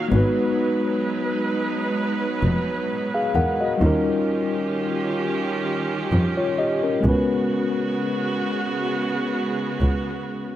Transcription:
Already playing: F#3 A#3 D#4 F4 F#4 C#5
0.08 G#1 G#3 B3 D#4 B4
0.13 D#4 F#4
0.17 B4
2.43 F1
3.14 G#4 F5
3.35 E2 A#4 F#5
3.61 F#4 D#5
3.78 D#2 D#3 G3 C#4 F4 G4
3.82 D#4 F4 A#4
6.12 F2
6.37 F4 C#5
6.58 G4 D#5
6.83 C#4 A#4
7.00 G#3 B3
7.04 C#2 C#3 G#3 B3 C#4 F#4
7.09 B4
9.81 C#2

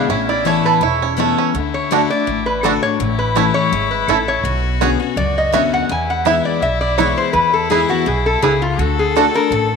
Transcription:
Already playing: F5
0.08 A1 A2 C#4 E4 E5
0.29 E4 D5
0.45 E3 A3 B3 C#4 E4 C#5
0.65 A4 B4
0.81 E1 E2 E4 C#5
1.02 C#4
1.17 E3 A3 B3 C#4 E4
1.38 C#4
1.54 D2 D3 E4
1.74 C#5
1.91 D3 A3 D4 F#4
2.10 D4 F#4 D5
2.27 A1 A2
2.46 B4
2.63 D3 A3 D4 F#4 A4
2.83 D4 F#4 C#5
3.00 A1 A2 E4
3.19 B4
3.35 E3 A3 C#4 E4
3.54 C#5
3.72 G#1 G#2
3.91 B4
4.08 A1 A2 A3 C#4 E4 A4
4.28 C#5
4.43 B1 B2 F#4
4.81 D3 B3 C#4 F#4 G#4
5.00 C#4 F#4
5.16 C#2 F#2 D5
5.38 D#5
5.52 D2 D3 B3 C#4 F#4 E5
5.74 F#5
5.89 E2 E4 G#5
6.10 F#5
6.25 E3 G#3 B3 E4 E5
6.45 D5
6.61 B1 B2 E5
6.81 D5
6.98 E3 G#3 B3 E4 C#5
7.17 C5
7.33 E2 B4
7.54 A4
7.70 E3 G#3 B3 E4 G#4
7.89 B3 E4 F#4
8.06 B1 B2 G#4
8.26 A4
8.42 C#2 C#3 B3 E4 G#4
8.62 F4
8.78 D2 D3 F#4 A4
8.99 G#4
9.16 D3 A3 D4 F#4 A4
9.34 D4 F#4 A#4
9.51 A1 A2 A4

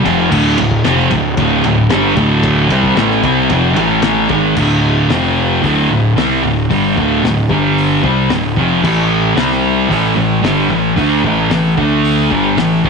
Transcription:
0.04 F1 F2 C3 F3, kick, ride
0.30 D1 D2 A2 D3, kick, crash
0.58 D1 D2 A2, ride
0.71 kick
0.84 F1 F2 C3 F3, snare, ride
0.99 snare
1.11 D1 D2 A2, kick, ride
1.37 D1 D2 A2 D3, kick, ride
1.64 D1 D2 A2, ride
1.89 G1 G2 D3 G3, snare, ride
2.16 D1 D2 A2 D3, kick, ride
2.43 kick, ride
2.68 C2 C3 G3 C4, ride
2.83 kick
2.96 A1 A2 E3 A3, snare, ride
3.11 snare
3.22 C2 C3 G3 C4, kick, ride
3.49 F1 F2 C3 F3, kick, ride
3.76 A1 A2 E3 A3, ride
4.02 snare, ride
4.29 G#1 G#2 D#3 G#3, kick, ride
4.56 D1 D2 A2 D3, kick, crash
5.10 F1 F2 C3 F3, snare, open hi-hat
5.63 D1 D2 A2 D3, kick, open hi-hat
5.90 D1 D2 A2
6.17 C2 C3 G3 C4, snare, open hi-hat
6.43 D1 D2 A2
6.70 G1 G2 D3 G3, kick, open hi-hat
6.96 D1 D2 A2 D3, kick
7.24 D1 D2 A2, snare, open hi-hat
7.50 G1 G2 D3 G3, kick
7.78 open hi-hat
8.02 C2 C3 G3 C4, kick
8.30 D1 D2 A2, snare, open hi-hat
8.56 F1 F2 C3 F3, kick
8.83 A1 A2 E3 A3, kick, crash
9.36 C2 C3 G3 C4, snare, open hi-hat
9.52 snare
9.89 A1 A2 E3 A3, kick, open hi-hat
10.16 A1 A2 E3
10.43 G1 G2 D3 G3, snare, open hi-hat
10.69 A1 A2 E3
10.96 D2 D3 A3 D4, kick, open hi-hat
11.24 A1 A2 E3 A3, kick
11.50 A1 A2 E3, snare, open hi-hat
11.77 D2 D3 A3 D4, kick
12.05 open hi-hat
12.31 G1 G2 D3 G3, kick
12.56 A1 A2 E3, snare, open hi-hat
12.84 C2 C3 G3 C4, kick

